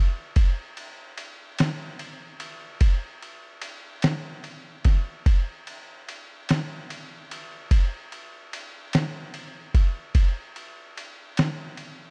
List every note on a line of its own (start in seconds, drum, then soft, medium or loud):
0.36 kick loud
0.36 ride medium
0.77 ride medium
1.18 ride medium
1.59 snare loud
1.59 ride medium
1.99 ride medium
2.40 ride medium
2.81 kick medium
2.81 ride medium
3.22 ride medium
3.62 ride medium
4.02 snare loud
4.02 ride medium
4.44 ride medium
4.85 kick medium
4.85 snare soft
4.85 ride medium
5.26 kick loud
5.26 ride medium
5.67 ride medium
6.08 ride medium
6.49 snare loud
6.49 ride medium
6.90 ride medium
7.31 ride medium
7.71 kick medium
7.71 ride medium
8.12 ride medium
8.53 ride medium
8.93 snare loud
8.93 ride medium
9.34 ride medium
9.75 kick medium
9.75 ride medium
10.15 kick loud
10.15 ride medium
10.56 ride medium
10.97 ride medium
11.37 snare loud
11.37 ride medium
11.77 ride medium